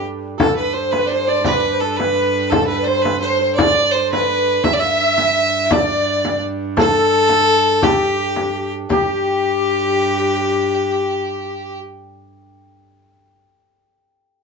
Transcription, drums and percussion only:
0.40 frame drum
0.93 frame drum
1.44 frame drum
2.00 frame drum
2.18 frame drum
2.52 frame drum
3.05 frame drum
3.24 frame drum
3.59 frame drum
4.13 frame drum
4.29 frame drum
4.48 frame drum
4.64 frame drum
5.18 frame drum
5.36 frame drum
5.71 frame drum
6.25 frame drum
6.42 frame drum
6.77 frame drum
7.29 frame drum
7.83 frame drum
8.02 frame drum
8.36 frame drum
8.90 frame drum

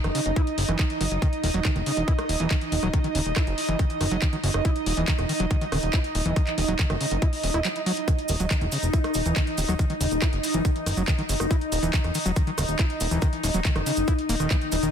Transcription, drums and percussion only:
0.04 cross-stick, closed hi-hat
0.15 open hi-hat
0.26 closed hi-hat
0.36 kick, closed hi-hat
0.47 closed hi-hat
0.58 open hi-hat
0.69 cross-stick, closed hi-hat
0.79 kick, clap, closed hi-hat
0.90 closed hi-hat
1.01 open hi-hat
1.11 closed hi-hat
1.22 kick, closed hi-hat
1.33 closed hi-hat
1.44 open hi-hat
1.54 closed hi-hat
1.65 kick, cross-stick, clap, closed hi-hat
1.76 closed hi-hat
1.86 open hi-hat
1.97 closed hi-hat
2.08 kick, closed hi-hat
2.19 cross-stick, closed hi-hat
2.29 open hi-hat
2.40 closed hi-hat
2.51 kick, clap, closed hi-hat
2.61 closed hi-hat
2.72 open hi-hat
2.83 cross-stick, closed hi-hat
2.94 kick, closed hi-hat
3.04 closed hi-hat
3.15 open hi-hat
3.26 closed hi-hat
3.36 kick, cross-stick, clap, closed hi-hat
3.47 closed hi-hat
3.58 open hi-hat
3.69 closed hi-hat
3.79 kick, closed hi-hat
3.90 closed hi-hat
4.01 cross-stick, open hi-hat
4.11 closed hi-hat
4.22 kick, clap, closed hi-hat
4.33 closed hi-hat
4.44 open hi-hat
4.54 cross-stick
4.65 kick, closed hi-hat
4.76 closed hi-hat
4.86 open hi-hat
4.97 closed hi-hat
5.08 kick, clap, closed hi-hat
5.19 cross-stick, closed hi-hat
5.29 open hi-hat
5.40 closed hi-hat
5.51 kick, closed hi-hat
5.61 closed hi-hat
5.72 cross-stick, open hi-hat
5.83 closed hi-hat
5.93 kick, clap, closed hi-hat
6.04 closed hi-hat
6.15 open hi-hat
6.26 closed hi-hat
6.36 kick, cross-stick, closed hi-hat
6.47 clap, closed hi-hat
6.58 open hi-hat
6.68 closed hi-hat
6.79 kick, clap, closed hi-hat
6.90 cross-stick, closed hi-hat
7.01 open hi-hat
7.11 closed hi-hat
7.22 kick, closed hi-hat
7.33 open hi-hat
7.43 open hi-hat
7.54 cross-stick, closed hi-hat
7.65 clap, closed hi-hat
7.76 closed hi-hat
7.86 open hi-hat
7.97 closed hi-hat
8.08 kick, closed hi-hat, cabasa
8.19 closed hi-hat
8.28 open hi-hat, cabasa
8.40 closed hi-hat, cabasa
8.51 kick, cross-stick, clap, closed hi-hat, cabasa
8.61 closed hi-hat
8.72 open hi-hat, cabasa
8.83 closed hi-hat, cabasa
8.93 kick, closed hi-hat, cabasa
9.04 cross-stick, closed hi-hat
9.14 open hi-hat, cabasa
9.26 closed hi-hat, cabasa
9.36 kick, clap, closed hi-hat, cabasa
9.47 closed hi-hat
9.58 open hi-hat, cabasa
9.69 cross-stick, closed hi-hat, cabasa
9.79 kick, closed hi-hat, cabasa
9.90 closed hi-hat
10.01 open hi-hat, cabasa
10.11 closed hi-hat, cabasa
10.22 kick, cross-stick, clap, closed hi-hat, cabasa
10.33 closed hi-hat
10.43 open hi-hat, cabasa
10.54 closed hi-hat, cabasa
10.65 kick, closed hi-hat, cabasa
10.76 closed hi-hat
10.86 cross-stick, open hi-hat, cabasa
10.97 closed hi-hat, cabasa
11.08 kick, clap, closed hi-hat, cabasa
11.19 closed hi-hat
11.29 open hi-hat, cabasa
11.40 cross-stick, closed hi-hat, cabasa
11.51 kick, closed hi-hat, cabasa
11.61 closed hi-hat
11.72 open hi-hat, cabasa
11.83 closed hi-hat, cabasa
11.94 kick, clap, closed hi-hat, cabasa
12.04 cross-stick, closed hi-hat
12.15 open hi-hat, cabasa
12.26 closed hi-hat, cabasa
12.36 kick, closed hi-hat, cabasa
12.47 closed hi-hat
12.58 cross-stick, open hi-hat, cabasa
12.68 closed hi-hat, cabasa
12.79 kick, clap, closed hi-hat, cabasa
12.90 closed hi-hat
13.00 open hi-hat, cabasa
13.11 closed hi-hat, cabasa
13.22 kick, cross-stick, closed hi-hat, cabasa
13.33 closed hi-hat
13.43 open hi-hat, cabasa
13.54 closed hi-hat, cabasa
13.65 kick, clap, closed hi-hat, cabasa
13.76 cross-stick, closed hi-hat
13.86 open hi-hat, cabasa
13.97 closed hi-hat, cabasa
14.08 kick, closed hi-hat, cabasa
14.19 closed hi-hat
14.29 open hi-hat, cabasa
14.40 cross-stick, closed hi-hat, cabasa
14.51 kick, clap, closed hi-hat, cabasa
14.61 closed hi-hat
14.72 open hi-hat, cabasa
14.83 closed hi-hat, cabasa

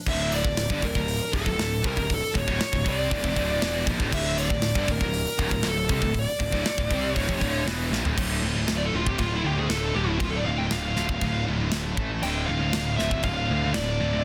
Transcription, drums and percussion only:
0.07 kick, crash
0.32 open hi-hat
0.45 kick
0.57 snare, open hi-hat
0.70 kick
0.82 kick, open hi-hat
0.95 kick
1.08 open hi-hat
1.33 kick, open hi-hat
1.46 kick
1.59 snare, open hi-hat
1.84 kick, open hi-hat
1.97 kick
2.10 kick, open hi-hat
2.35 kick, open hi-hat
2.48 kick
2.60 snare, open hi-hat
2.73 kick
2.86 kick, open hi-hat
3.11 kick, open hi-hat
3.24 kick
3.36 kick, open hi-hat
3.62 snare, open hi-hat
3.87 kick, open hi-hat
4.00 kick
4.12 kick, crash
4.38 open hi-hat
4.50 kick
4.62 snare, open hi-hat
4.75 kick
4.88 kick, open hi-hat
5.01 kick
5.14 open hi-hat
5.39 kick, open hi-hat
5.51 kick
5.63 snare, open hi-hat
5.89 kick, open hi-hat
6.02 kick
6.14 kick, open hi-hat
6.40 kick
6.52 kick
6.66 snare, open hi-hat
6.78 kick
6.91 kick, open hi-hat
7.16 kick, open hi-hat
7.29 kick
7.41 kick, open hi-hat
7.67 snare, open hi-hat
7.93 snare
8.05 floor tom
8.18 kick, crash
8.68 snare, crash
9.07 kick
9.18 kick, crash
9.70 snare, crash
10.20 kick, crash
10.71 snare, crash
10.96 snare
11.09 kick
11.21 kick, crash
11.71 snare, crash
11.97 kick
12.23 crash
12.73 snare, crash
12.99 snare
13.11 kick
13.23 kick, crash
13.74 snare, crash

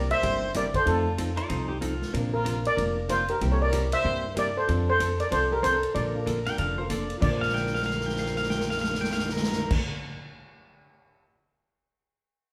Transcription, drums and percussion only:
0.11 ride
0.23 kick, ride
0.54 kick, hi-hat pedal, ride
0.74 kick, ride
0.87 kick, ride
1.18 kick, hi-hat pedal, ride
1.37 ride
1.50 kick, ride
1.82 kick, hi-hat pedal, ride
2.02 snare
2.14 kick, ride
2.46 kick, hi-hat pedal, ride
2.65 ride
2.78 kick, ride
3.09 kick, hi-hat pedal, ride
3.28 ride
3.41 kick, ride
3.73 kick, hi-hat pedal, ride
3.92 ride
4.05 kick
4.37 kick, hi-hat pedal, ride
4.69 kick, ride
5.00 kick, hi-hat pedal, ride
5.20 ride
5.32 kick, ride
5.64 kick, hi-hat pedal, ride
5.83 ride
5.95 kick, ride
6.27 kick, hi-hat pedal, ride
6.46 snare, ride
6.58 kick, ride
6.90 kick, hi-hat pedal, ride
7.10 ride
7.22 kick, crash
7.42 snare
7.49 snare
7.55 snare
7.66 snare
7.75 snare
7.82 snare
7.90 snare
8.01 snare
8.09 snare
8.16 snare
8.26 snare
8.36 snare
8.43 snare
8.50 snare
8.60 snare
8.71 snare
8.77 snare
8.84 snare
8.94 snare
9.04 snare
9.11 snare
9.19 snare
9.29 snare
9.36 snare
9.43 snare
9.52 snare
9.70 kick, crash

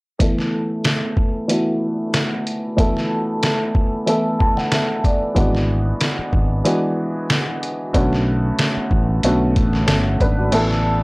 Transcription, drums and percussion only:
0.20 kick, closed hi-hat
0.39 snare
0.85 snare, closed hi-hat
1.17 kick
1.49 closed hi-hat
2.14 snare, closed hi-hat
2.47 closed hi-hat
2.78 kick, closed hi-hat
2.97 snare
3.43 snare, closed hi-hat
3.75 kick
4.07 closed hi-hat
4.40 kick
4.57 snare
4.72 snare, closed hi-hat
5.04 kick, closed hi-hat
5.36 kick, closed hi-hat
5.55 snare
6.01 snare, closed hi-hat
6.33 kick
6.65 closed hi-hat
7.30 snare, closed hi-hat
7.63 closed hi-hat
7.94 kick, closed hi-hat
8.13 snare
8.59 snare, closed hi-hat
8.91 kick
9.23 closed hi-hat
9.56 kick, closed hi-hat
9.73 snare
9.88 snare, closed hi-hat
10.20 kick, closed hi-hat
10.52 closed hi-hat, crash
10.71 snare

